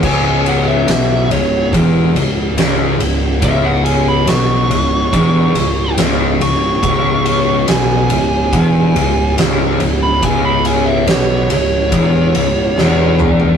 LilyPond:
<<
  \new Staff \with { instrumentName = "Lead electric guitar" } { \time 4/4 \key cis \minor \tempo 4 = 71 gis''8 fis''16 e''8. cis''8 r2 | e''16 fis''16 gis''16 b''16 cis'''2 r8 cis'''8~ | cis'''4 gis''2 r8. b''16 | gis''16 b''16 gis''16 e''16 cis''8 cis''2 r8 | }
  \new Staff \with { instrumentName = "Distorted electric guitar" } { \clef bass \time 4/4 \key cis \minor cis,4 b,8 cis,8 e,8 cis,8 cis,8 cis,8 | cis,4 b,8 cis,8 e,8 cis,8 cis,8 cis,8 | cis,4 b,8 cis,8 e,8 cis,8 cis,8 cis,8 | cis,4 b,8 cis,8 e,8 cis,8 e,4 | }
  \new Staff \with { instrumentName = "Distorted electric guitar" } { \clef bass \time 4/4 \key cis \minor cis,4 b,8 cis,8 e,8 cis,8 cis,8 cis,8 | cis,4 b,8 cis,8 e,8 cis,8 cis,8 cis,8 | cis,4 b,8 cis,8 e,8 cis,8 cis,8 cis,8 | cis,4 b,8 cis,8 e,8 cis,8 e,4 | }
  \new Staff \with { instrumentName = "Picked electric bass" } { \clef bass \time 4/4 \key cis \minor cis,,4 b,,8 cis,,8 e,,8 cis,,8 cis,,8 cis,,8 | cis,,4 b,,8 cis,,8 e,,8 cis,,8 cis,,8 cis,,8 | cis,,4 b,,8 cis,,8 e,,8 cis,,8 cis,,8 cis,,8 | cis,,4 b,,8 cis,,8 e,,8 cis,,8 e,,4 | }
  \new DrumStaff \with { instrumentName = "Drums" } \drummode { \time 4/4 <cymc bd>8 cymr8 <cymr sn>8 cymr8 <bd cymr>8 cymr8 <cymr sn>8 cymr8 | <bd cymr>8 cymr8 <cymr sn>8 cymr8 <bd cymr>8 cymr8 <cymr sn>8 cymr8 | <bd cymr>8 cymr8 <cymr sn>8 cymr8 <bd cymr>8 cymr8 <cymr sn>8 cymr8 | <bd cymr>8 cymr8 <cymr sn>8 cymr8 <bd cymr>8 cymr8 sn8 toml16 tomfh16 | }
>>